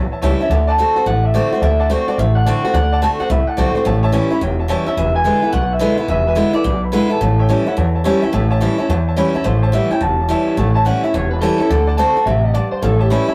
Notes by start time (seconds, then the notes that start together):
Already playing: E2
0.11 C#5 E5 A5, muted upright bass stroke
0.22 C#2 E3 G3 C#4 E4 C#5 E5 A5
0.39 C#4 E4 C#5 E5 A5
0.50 D2 D3 D5 F#5 A5
0.67 D5 F#5 A5
0.78 D3 A3 C4 F#4 D5 C6
0.96 C4 F#4 D5 F#5 C6, muted upright bass stroke
1.06 A1 A2 D5 F#5 A5
1.23 D5 E5 F#5 A5
1.34 D3 A3 C4 F#4 D5 F#5 A5
1.52 C4 F#4 D5 F#5 C6, muted upright bass stroke
1.61 D2 D3 D5 E5 F#5 A5
1.80 D5 F#5 A5
1.89 D3 A3 C4 F#4 D5 F#5 A5
2.07 C4 F#4 D5 F#5 A5, muted upright bass stroke
2.17 A1 A2 D5 E5 F#5 A5
2.35 D5 F#5 A5
2.45 D3 A3 C4 F#4 D5 F#5 A5
2.63 C4 F#4 D5 F#5 A5, muted upright bass stroke
2.74 D2 D3 D5 F#5 A5
2.92 D5 F#5 A5
3.02 D3 A3 C4 F#4 D5 A5
3.20 C4 F#4 D5 F#5 A5, muted upright bass stroke
3.30 C2 A2 D5 E5 F#5 B5
3.47 D5 F#5 A5
3.57 B1 D3 A3 C4 F#4 D5 F#5 A5
3.75 C4 F#4 D5 F#5 C6, muted upright bass stroke
3.85 A1 A2 C#5 E5 A5
4.03 C#5 E5 A5
4.12 E3 G3 C#4 E4 C#5 A5
4.30 C#4 E4 C#5 E5 B5, muted upright bass stroke
4.41 E1 E2 C#5 E5 G5
4.59 C#5 E5 A5
4.68 E3 G3 C#4 E4 C#5 E5 A5
4.86 C#4 E4 C#5 E5 A5, muted upright bass stroke
4.97 E1 E2 B4 E5 G#5
5.14 B4 E5 G#5
5.24 D3 G#3 B3 E4 E5
5.42 B3 E4 B4 E5 F#5, muted upright bass stroke
5.53 B1 B2 B4 E5 F#5 G#5
5.71 B4 E5 G#5
5.79 D3 G#3 B3 E4 B4 E5 G#5
5.97 B3 E4 B4 E5 G#5, muted upright bass stroke
6.08 E1 E2 B4 E5 G#5
6.27 B4 E5 G#5
6.35 D3 G#3 B3 E4 F#5
6.53 B3 E4 B4 D5 E5 G#5, muted upright bass stroke
6.64 B1 B2 B4 E5 G#5
6.83 B4 E5 B5
6.92 D3 G#3 B3 E4 B4 E5 G#5
7.10 B3 E4 A4 B4 E5 G#5, muted upright bass stroke
7.21 A1 A2 C#5 E5 A5
7.39 C#5 E5 G5
7.49 E3 G3 C#4 E4 C#5 E5 A5
7.66 C#4 E4 C#5 E5 F#5
7.76 E2 C#5 E5 A5
7.95 C#5 E5 A5
8.04 E3 G3 C#4 E4 C#5 E5 A5
8.22 C#4 E4 C#5 E5 G5, muted upright bass stroke
8.32 A1 A2 C#5 E5 A5
8.50 C#5 E5 A5
8.60 E3 G3 C#4 E4 C#5 E5 A5
8.78 C#4 E4 C#5 E5 A5, muted upright bass stroke
8.89 E2 C#5 E5 A5
9.07 C#5 E5 A5
9.16 E3 G3 C#4 E4 C#5 E5 B5
9.34 C#4 E4 C#5 E5 A5, muted upright bass stroke
9.44 A1 A2 C5 C#5 E5 A5
9.62 C#5 E5 A5
9.72 E3 G3 C#4 E4 C#5 E5 F#5
9.90 C#4 E4 C#5 E5 G5 A5, muted upright bass stroke
10.01 E1 E2 C#5 E5 F#5 A5
10.20 C#5 E5 A5
10.28 E3 G3 C#4 E4 C#5 E5 A5
10.47 C#5 E5 A5, muted upright bass stroke
10.57 A1 A2 C#5 E5 A5
10.75 C#5 E5 A5
10.85 E3 G3 C#4 E4 C#5 E5 F#5 A5
11.03 C#4 E4 C#5 E5 A5, muted upright bass stroke
11.14 E1 E2 C#5 E5 A5
11.31 B4 C#5 E5 A5
11.41 E3 G3 C#4 E4 A4 C#5 E5 A5
11.58 C#4 E4 A4 C#5 E5 A5, muted upright bass stroke
11.69 D2 D3 D5 F#5 A5
11.87 D5 F#5 A5
11.97 D3 A3 C4 F#4 D5 F#5 A5
12.15 C4 F#4 D5 F#5 A5, muted upright bass stroke
12.26 A1 C3 D5 E5 F#5 A5
12.44 D5 D#5 F#5 A5
12.54 G2 D5 F#5 A5
12.71 C5 D5 F#5 A5, muted upright bass stroke
12.81 A1 A2 A4 C#5 E5 A5
12.99 G4 C#5 E5 A5
13.10 E3 G3 C#4 E4 C#5 A5
13.28 C#4 E4 C#5 E5 A5, muted upright bass stroke